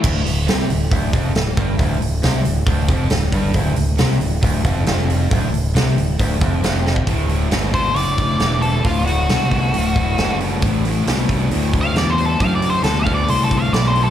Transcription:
<<
  \new Staff \with { instrumentName = "Lead electric guitar" } { \time 4/4 \key c \lydian \tempo 4 = 136 r1 | r1 | r1 | r1 |
r4. c''8 d''4. a'8 | f'8 fis'2. r8 | r2 \tuplet 3/2 { r4 f''8 d''8 c''8 a'8 } | \tuplet 3/2 { f''8 d''8 c''8 a'8 f''8 d''8 c''8 a'8 f''8 d''8 c''8 a'8 } | }
  \new Staff \with { instrumentName = "Overdriven electric guitar" } { \clef bass \time 4/4 \key c \lydian d,8 d,8 c8 d,8 d,8 f,8 d,8 g,8 | d,8 d,8 c8 d,8 d,8 f,8 d,8 g,8 | d,8 d,8 c8 d,8 d,8 f,8 f,4 | d,8 d,8 c8 d,8 d,8 f,8 f,4 |
<d, a,>8 <d, a,>8 <d, b,>8 <d, b,>8 <d, a,>8 <d, a,>8 <d, b,>8 <d, b,>8 | <d, a,>8 <d, a,>8 <d, b,>8 <d, b,>8 <d, a,>8 <d, a,>8 <d, b,>8 <d, b,>8 | <d, a,>8 <d, a,>8 <d, b,>8 <d, b,>8 <d, a,>8 <d, a,>8 <d, b,>8 <d, b,>8 | <d, a,>8 <d, a,>8 <d, b,>8 <d, b,>8 <d, a,>8 <d, a,>8 <d, b,>8 <d, b,>8 | }
  \new Staff \with { instrumentName = "Fingered electric bass" } { \clef bass \time 4/4 \key c \lydian d,,8 d,,8 c,8 d,,8 d,,8 f,,8 d,,8 g,,8 | d,,8 d,,8 c,8 d,,8 d,,8 f,,8 d,,8 g,,8 | d,,8 d,,8 c,8 d,,8 d,,8 f,,8 f,,4 | d,,8 d,,8 c,8 d,,8 d,,8 f,,8 f,,4 |
d,,4 g,,4 fis,,4 e,,4 | d,,4 c,4 d,,4 fis,,4 | a,,4 c,4 d,4 e,4 | fis,4 d,4 c,4 b,,4 | }
  \new DrumStaff \with { instrumentName = "Drums" } \drummode { \time 4/4 <cymc bd>8 hho8 <hho sn>8 hho8 <hho bd>8 <hho bd>8 <hho sn>8 <hho bd>8 | <hho bd>8 hho8 <hho sn>8 hho8 <hho bd>8 <hho bd>8 <hho sn>8 <hho bd>8 | <hho bd>8 hho8 <hho sn>8 hho8 <hho bd>8 <hho bd>8 <hho sn>8 hho8 | <hho bd>8 hho8 <hho sn>8 hho8 <hho bd>8 <hho bd>8 <hho sn>8 sn16 bd16 |
<hho bd>8 hho8 <hho sn>8 <hho bd>8 hho8 <hho bd>8 <hho sn>8 hho8 | <hho bd>8 hho8 <hho sn>8 <hho bd>8 hho8 <hho bd>8 <hho sn>8 hho8 | <hho bd>8 hho8 <hho sn>8 <hho bd>8 hho8 <hho bd>8 <hho sn>8 hho8 | <hho bd>8 hho8 <hho sn>8 <hho bd>8 hho8 <hho bd>8 <hho sn>8 hho8 | }
>>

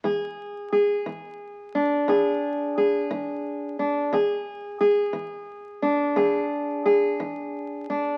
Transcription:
\new Staff \with { instrumentName = "Steel-string acoustic guitar" } { \time 12/8 \key e \dorian \tempo 4. = 59 << { gis'4 gis'4. d'8 gis'4 gis'4. d'8 | gis'4 gis'4. d'8 gis'4 gis'4. d'8 | } \\ { e4 r8 e4 r8 e4 r8 e4 r8 | e4 r8 e4 r8 e4 r8 e4 r8 | } >> }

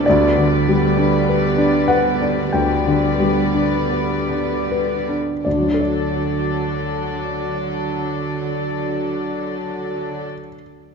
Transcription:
<<
  \new Staff \with { instrumentName = "Violin section" } { \time 4/4 \key d \major \tempo 4 = 43 <b' d''>2 <b' d''>2 | <a' d''>1 | }
  \new Staff \with { instrumentName = "Grand piano" } { \time 4/4 \key d \major << { d''4. fis''8 g''4. r8 | <d, d fis d' a' d''>1 | } \\ { d,16 d16 g16 d'16 b'16 d'16 b'16 d'16 d,16 d16 g16 d'16 b'16 d'16 b'16 d'16 | r1 | } >> }
  \new Staff \with { instrumentName = "Viola section" } { \time 4/4 \key d \major <g b>2 <g b>2 | <fis d'>1 | }
  \new Staff \with { instrumentName = "Cello section" } { \clef bass \time 4/4 \key d \major d1 | d1 | }
>>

